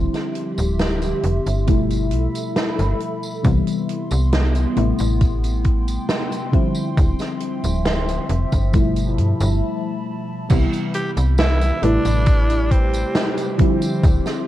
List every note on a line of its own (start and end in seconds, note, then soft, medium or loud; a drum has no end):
0.00 1.59 D3 medium
0.00 1.59 F3 medium
0.00 1.60 G3 medium
0.00 1.60 C4 medium
0.00 1.60 E4 loud
0.00 1.66 G4 medium
0.00 4.73 E5 medium
0.00 1.64 C6 medium
0.14 snare soft
0.14 closed hi-hat medium
0.14 tambourine soft
0.35 closed hi-hat medium
0.58 1.13 D1 medium
0.58 closed hi-hat medium
0.58 tambourine medium
0.79 snare loud
0.79 closed hi-hat medium
0.79 tambourine soft
1.02 closed hi-hat soft
1.02 tambourine soft
1.23 1.39 F1 medium
1.23 closed hi-hat medium
1.47 2.13 G1 medium
1.47 closed hi-hat medium
1.47 tambourine soft
1.67 3.35 B2 medium
1.67 3.36 F3 medium
1.67 3.36 G3 medium
1.67 3.36 A3 medium
1.67 3.37 E4 medium
1.67 3.42 A4 medium
1.67 3.42 B5 medium
1.67 kick loud
1.67 closed hi-hat medium
1.67 tambourine soft
1.90 closed hi-hat medium
1.90 tambourine soft
2.11 2.27 B1 medium
2.11 closed hi-hat medium
2.35 closed hi-hat medium
2.35 tambourine medium
2.56 snare loud
2.56 closed hi-hat medium
2.56 tambourine soft
2.79 2.94 G1 medium
2.79 closed hi-hat medium
2.79 tambourine soft
3.00 closed hi-hat soft
3.23 tambourine medium
3.43 3.60 C2 loud
3.43 4.68 C3 medium
3.43 4.68 E3 medium
3.43 4.68 G3 medium
3.43 6.50 B3 medium
3.43 4.69 B3 medium
3.43 4.69 E4 medium
3.43 4.76 C6 medium
3.43 kick loud
3.43 closed hi-hat medium
3.43 tambourine soft
3.67 closed hi-hat medium
3.67 tambourine soft
3.89 closed hi-hat medium
4.11 4.66 C2 medium
4.11 closed hi-hat soft
4.11 tambourine medium
4.32 snare loud
4.32 closed hi-hat medium
4.32 tambourine soft
4.55 closed hi-hat medium
4.55 tambourine soft
4.75 4.92 A1 medium
4.75 6.44 C3 medium
4.75 6.44 G3 medium
4.75 6.45 A3 medium
4.75 6.45 B3 medium
4.75 6.45 E4 medium
4.75 8.70 G5 medium
4.75 8.70 C6 medium
4.75 closed hi-hat medium
4.99 5.98 A1 medium
4.99 closed hi-hat soft
4.99 tambourine medium
5.21 kick loud
5.21 closed hi-hat medium
5.21 tambourine soft
5.44 closed hi-hat medium
5.44 tambourine soft
5.64 kick medium
5.64 closed hi-hat medium
5.88 closed hi-hat medium
5.88 tambourine medium
6.09 snare loud
6.09 closed hi-hat medium
6.09 tambourine soft
6.32 closed hi-hat medium
6.32 tambourine soft
6.52 8.64 D3 medium
6.52 8.65 F3 medium
6.52 10.46 F3 medium
6.52 8.65 G3 medium
6.52 8.66 C4 medium
6.52 8.66 E4 loud
6.52 10.46 E5 medium
6.52 kick loud
6.52 closed hi-hat medium
6.75 tambourine medium
6.98 7.13 D1 loud
6.98 kick loud
6.98 closed hi-hat medium
6.98 tambourine soft
7.19 snare soft
7.19 closed hi-hat soft
7.19 tambourine soft
7.40 closed hi-hat medium
7.64 8.19 D1 medium
7.64 closed hi-hat medium
7.64 tambourine medium
7.85 snare loud
7.85 closed hi-hat medium
7.85 tambourine soft
8.09 closed hi-hat medium
8.09 tambourine soft
8.29 8.45 F1 medium
8.29 closed hi-hat medium
8.52 9.19 G1 medium
8.52 kick medium
8.52 closed hi-hat medium
8.52 tambourine soft
8.72 9.61 B2 medium
8.72 9.62 F3 medium
8.72 9.62 G3 medium
8.72 9.63 A3 medium
8.72 9.63 E4 medium
8.72 10.49 A5 medium
8.72 10.48 B5 medium
8.72 kick loud
8.72 closed hi-hat medium
8.72 tambourine soft
8.96 closed hi-hat medium
8.96 tambourine soft
9.18 9.33 G2 medium
9.18 closed hi-hat medium
9.40 9.62 G1 loud
9.40 closed hi-hat medium
9.40 tambourine medium
10.49 10.66 C2 loud
10.49 11.73 C3 medium
10.49 11.74 E3 medium
10.49 11.74 G3 medium
10.49 11.75 B3 medium
10.49 11.82 E4 medium
10.49 11.75 E4 medium
10.49 13.56 B5 medium
10.49 kick loud
10.49 closed hi-hat medium
10.49 crash loud
10.49 tambourine soft
10.73 closed hi-hat medium
10.73 tambourine soft
10.94 11.11 G4 loud
10.94 closed hi-hat loud
11.17 11.72 C2 medium
11.17 closed hi-hat medium
11.17 tambourine medium
11.38 11.84 E4 loud
11.38 snare loud
11.38 closed hi-hat medium
11.38 tambourine soft
11.61 closed hi-hat medium
11.61 tambourine soft
11.81 11.98 A1 medium
11.81 13.50 C3 medium
11.81 13.50 G3 medium
11.81 13.51 A3 medium
11.81 12.73 D4 loud
11.81 13.51 E4 medium
11.81 14.47 G4 medium
11.81 13.51 B4 medium
11.81 closed hi-hat loud
12.05 13.04 A1 medium
12.05 closed hi-hat medium
12.05 tambourine medium
12.26 kick loud
12.26 closed hi-hat medium
12.26 tambourine medium
12.50 closed hi-hat medium
12.50 tambourine soft
12.71 13.60 C4 medium
12.71 kick medium
12.71 closed hi-hat loud
12.93 closed hi-hat medium
12.93 tambourine medium
13.15 snare loud
13.15 closed hi-hat medium
13.15 tambourine medium
13.37 closed hi-hat medium
13.37 tambourine soft
13.58 14.47 D3 medium
13.58 14.47 F3 medium
13.58 14.47 G3 medium
13.58 14.47 C4 medium
13.58 14.47 E4 loud
13.58 14.47 E5 medium
13.58 14.47 C6 medium
13.58 kick loud
13.58 closed hi-hat loud
13.82 closed hi-hat medium
13.82 tambourine medium
14.03 14.19 D1 loud
14.03 kick loud
14.03 closed hi-hat medium
14.03 tambourine soft
14.26 snare soft
14.26 closed hi-hat medium
14.26 tambourine soft